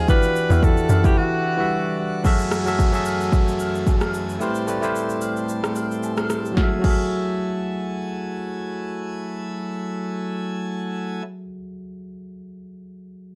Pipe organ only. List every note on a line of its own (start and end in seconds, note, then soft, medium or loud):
0.08 2.22 E3 medium
0.08 2.22 D4 medium
0.08 2.22 F#5 medium
2.25 4.39 F#2 medium
2.25 4.39 E3 medium
2.25 4.39 A3 medium
2.25 4.39 G#5 medium
4.41 6.55 A2 medium
4.41 6.55 G3 medium
4.41 6.55 C4 medium
4.41 6.55 A4 medium
6.57 11.22 F#3 medium
6.57 11.22 A3 medium
6.57 11.22 E4 medium
6.57 11.22 G#5 medium